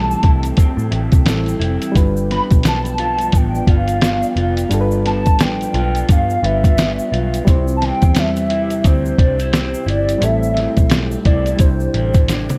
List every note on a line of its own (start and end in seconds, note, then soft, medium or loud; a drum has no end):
0.00 0.14 B1 medium
0.00 1.95 A2 medium
0.00 1.91 E3 medium
0.00 1.21 G3 medium
0.00 2.64 G3 medium
0.00 0.57 C4 medium
0.00 1.22 C4 medium
0.00 1.91 C4 medium
0.00 0.22 E4 medium
0.00 1.23 E4 medium
0.00 1.24 A4 medium
0.00 1.93 A4 medium
0.00 10.17 G5 medium
0.00 0.91 A5 loud
0.11 shaker soft
0.23 0.51 C2 medium
0.23 0.90 E4 medium
0.23 kick medium
0.23 closed hi-hat medium
0.43 closed hi-hat medium
0.43 shaker soft
0.57 1.25 C4 medium
0.57 kick medium
0.57 closed hi-hat medium
0.57 shaker medium
0.77 0.89 A2 medium
0.77 shaker soft
0.91 1.08 A1 medium
0.91 1.58 E4 medium
0.91 closed hi-hat medium
1.12 1.23 C2 medium
1.12 kick medium
1.12 closed hi-hat soft
1.12 shaker soft
1.25 1.53 A1 medium
1.25 1.91 G3 medium
1.25 2.04 C4 medium
1.25 1.96 C4 medium
1.25 1.96 E4 medium
1.25 1.96 A4 medium
1.25 snare loud
1.25 closed hi-hat medium
1.25 shaker medium
1.46 closed hi-hat soft
1.46 shaker medium
1.59 1.77 F1 medium
1.59 2.03 E4 medium
1.59 closed hi-hat medium
1.82 closed hi-hat medium
1.82 shaker soft
1.92 2.39 G1 loud
1.92 4.65 G3 medium
1.92 4.66 D4 medium
1.92 4.67 F4 medium
1.92 7.42 D5 medium
1.92 kick loud
1.92 closed hi-hat loud
1.96 4.69 G2 medium
1.96 7.43 F4 medium
1.96 7.43 B4 medium
1.96 4.68 B4 medium
1.96 shaker medium
2.17 shaker medium
2.30 3.33 B3 medium
2.30 2.45 B5 loud
2.30 snare soft
2.30 closed hi-hat medium
2.51 3.29 B1 medium
2.51 kick medium
2.51 closed hi-hat medium
2.51 shaker soft
2.63 5.40 F3 medium
2.63 snare loud
2.63 closed hi-hat medium
2.63 shaker medium
2.67 3.38 A5 loud
2.85 closed hi-hat soft
2.85 shaker soft
2.98 3.67 F4 medium
2.98 closed hi-hat medium
3.18 closed hi-hat medium
3.18 shaker soft
3.32 3.61 A1 loud
3.32 4.01 B3 medium
3.32 kick medium
3.32 closed hi-hat medium
3.32 shaker medium
3.37 3.71 G5 medium
3.55 shaker soft
3.67 4.22 G1 medium
3.67 4.36 F4 medium
3.67 4.72 F5 loud
3.67 kick medium
3.67 closed hi-hat medium
3.88 closed hi-hat soft
3.88 shaker soft
4.01 5.05 B3 medium
4.01 snare loud
4.01 closed hi-hat medium
4.01 shaker medium
4.23 shaker medium
4.36 4.64 F1 medium
4.36 5.74 F4 medium
4.36 closed hi-hat medium
4.57 closed hi-hat medium
4.57 shaker soft
4.69 5.27 G1 loud
4.69 7.46 G2 medium
4.69 6.39 G3 medium
4.69 6.39 D4 medium
4.69 6.40 F4 medium
4.69 closed hi-hat medium
4.69 shaker medium
4.74 4.80 A4 medium
4.81 6.44 B4 medium
4.91 shaker soft
5.06 6.08 B3 medium
5.06 5.43 A5 loud
5.06 snare soft
5.06 closed hi-hat medium
5.26 5.65 A1 medium
5.26 kick medium
5.26 closed hi-hat soft
5.26 shaker soft
5.39 7.55 F3 medium
5.39 6.10 G5 loud
5.39 snare loud
5.39 closed hi-hat medium
5.39 shaker medium
5.61 closed hi-hat soft
5.61 shaker soft
5.74 6.02 B1 medium
5.74 6.43 F4 medium
5.74 closed hi-hat medium
5.95 closed hi-hat soft
5.95 shaker soft
6.09 6.37 G2 loud
6.09 6.76 B3 medium
6.09 6.47 F5 medium
6.09 kick loud
6.09 closed hi-hat medium
6.09 shaker medium
6.30 shaker soft
6.43 6.98 G1 loud
6.43 7.44 G3 soft
6.43 7.46 D4 soft
6.43 7.11 F4 medium
6.43 7.47 F4 soft
6.43 7.47 B4 medium
6.43 7.47 E5 loud
6.43 closed hi-hat medium
6.64 kick medium
6.64 closed hi-hat medium
6.64 shaker soft
6.77 7.55 B3 medium
6.77 snare loud
6.77 closed hi-hat medium
6.77 shaker medium
6.99 shaker medium
7.12 7.40 B1 medium
7.12 7.55 F4 medium
7.12 closed hi-hat medium
7.34 closed hi-hat medium
7.34 shaker soft
7.45 7.91 C2 loud
7.45 10.22 C3 medium
7.45 10.17 G3 medium
7.45 10.18 C4 medium
7.45 12.58 E4 medium
7.45 10.19 E4 medium
7.45 10.19 G4 medium
7.45 12.58 C5 medium
7.45 kick loud
7.45 closed hi-hat medium
7.45 shaker medium
7.50 10.20 C5 loud
7.68 shaker soft
7.76 7.86 A5 medium
7.81 8.85 C4 medium
7.81 8.20 G5 loud
7.81 snare soft
7.81 closed hi-hat medium
8.02 8.81 E2 medium
8.02 kick medium
8.02 closed hi-hat soft
8.02 shaker soft
8.15 10.89 G3 medium
8.15 snare loud
8.15 closed hi-hat loud
8.15 shaker medium
8.19 8.86 E5 loud
8.36 closed hi-hat soft
8.36 shaker soft
8.50 9.18 E4 medium
8.50 closed hi-hat medium
8.70 closed hi-hat soft
8.70 shaker soft
8.84 9.12 D2 loud
8.84 9.52 C4 medium
8.84 9.85 C5 medium
8.84 kick medium
8.84 closed hi-hat medium
8.84 shaker medium
9.05 shaker soft
9.18 9.74 C2 medium
9.18 9.40 D4 medium
9.18 kick loud
9.18 closed hi-hat medium
9.39 9.85 E4 soft
9.39 closed hi-hat medium
9.39 shaker soft
9.52 10.53 C4 medium
9.52 snare loud
9.52 closed hi-hat medium
9.52 shaker medium
9.74 shaker medium
9.86 10.14 G1 medium
9.86 11.26 E4 medium
9.86 10.25 D5 medium
9.86 closed hi-hat medium
10.09 closed hi-hat medium
10.09 shaker soft
10.18 10.66 A1 loud
10.18 11.59 A2 medium
10.18 11.55 G3 medium
10.18 11.56 C4 medium
10.18 11.57 E4 medium
10.18 11.58 A4 medium
10.18 closed hi-hat loud
10.22 11.58 A4 medium
10.22 10.92 E5 medium
10.22 12.58 G5 medium
10.22 shaker medium
10.43 shaker soft
10.54 11.67 C4 medium
10.54 snare soft
10.54 closed hi-hat medium
10.77 11.16 B1 medium
10.77 kick medium
10.77 closed hi-hat soft
10.77 shaker soft
10.90 12.58 G3 medium
10.90 snare loud
10.90 closed hi-hat medium
10.90 shaker medium
11.11 shaker soft
11.25 11.53 C2 medium
11.25 11.68 E4 medium
11.25 11.61 D5 loud
11.25 kick loud
11.25 closed hi-hat medium
11.46 closed hi-hat soft
11.46 shaker soft
11.56 11.87 C2 loud
11.56 12.58 C3 medium
11.56 12.58 G3 medium
11.56 12.58 D4 medium
11.56 12.58 E4 medium
11.56 12.58 C5 medium
11.56 12.58 D5 medium
11.56 kick medium
11.56 closed hi-hat medium
11.56 shaker medium
11.61 12.58 C5 medium
11.80 shaker soft
11.94 12.49 A1 medium
11.94 12.58 E4 medium
11.94 closed hi-hat medium
12.14 kick medium
12.14 closed hi-hat medium
12.14 shaker soft
12.28 12.58 D4 medium
12.28 snare medium
12.28 closed hi-hat loud
12.28 shaker medium
12.49 closed hi-hat soft
12.49 high tom medium
12.49 shaker medium